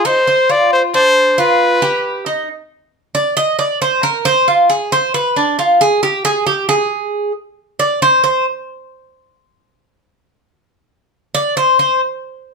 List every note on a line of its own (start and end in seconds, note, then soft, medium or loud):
0.05 0.26 D#4 medium
0.05 0.53 C5 loud
0.27 0.49 C5 medium
0.49 0.92 F4 medium
0.49 0.72 D5 loud
0.73 0.83 C5 medium
0.94 1.37 D4 medium
0.94 1.41 C5 loud
1.38 1.81 F4 medium
1.38 2.27 B4 loud
1.82 2.25 G4 medium
2.26 2.48 D#4 medium
3.15 3.36 D5 medium
3.37 3.58 D#5 loud
3.59 3.80 D5 medium
3.82 4.03 C5 medium
4.03 4.25 A#4 medium
4.25 4.47 C5 loud
4.48 4.69 F4 medium
4.70 4.91 G#4 medium
4.92 5.13 C5 loud
5.14 5.36 B4 medium
5.36 5.58 D4 medium
5.59 5.80 F4 medium
5.81 6.02 G#4 medium
6.03 6.24 G4 medium
6.25 6.46 G#4 loud
6.47 6.68 G4 medium
6.69 7.31 G#4 medium
7.79 8.01 D5 medium
8.02 8.22 C5 medium
8.24 8.45 C5 medium
11.35 11.56 D5 loud
11.57 11.78 C5 medium
11.79 12.00 C5 medium